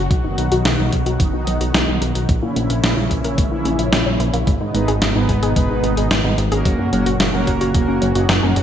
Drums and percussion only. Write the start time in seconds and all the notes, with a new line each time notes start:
0.11 kick, closed hi-hat
0.38 closed hi-hat
0.52 closed hi-hat
0.65 snare, closed hi-hat
0.93 kick, closed hi-hat
1.06 closed hi-hat
1.20 kick, closed hi-hat
1.47 closed hi-hat
1.61 closed hi-hat
1.74 snare, closed hi-hat
2.02 closed hi-hat
2.15 closed hi-hat
2.29 kick, closed hi-hat
2.56 closed hi-hat
2.70 closed hi-hat
2.84 snare, closed hi-hat
3.11 kick, closed hi-hat
3.24 closed hi-hat
3.38 kick, closed hi-hat
3.65 closed hi-hat
3.79 closed hi-hat
3.93 snare, closed hi-hat
4.20 closed hi-hat
4.34 closed hi-hat
4.47 kick, closed hi-hat
4.75 closed hi-hat
4.88 closed hi-hat
5.02 snare, closed hi-hat
5.29 kick, closed hi-hat
5.43 closed hi-hat
5.56 kick, closed hi-hat
5.84 closed hi-hat
5.97 closed hi-hat
6.11 snare, closed hi-hat
6.38 closed hi-hat
6.52 closed hi-hat
6.65 kick, closed hi-hat
6.93 closed hi-hat
7.06 closed hi-hat
7.20 snare, closed hi-hat
7.47 kick, closed hi-hat
7.61 closed hi-hat
7.75 kick, closed hi-hat
8.02 closed hi-hat
8.15 closed hi-hat
8.29 snare, closed hi-hat
8.56 closed hi-hat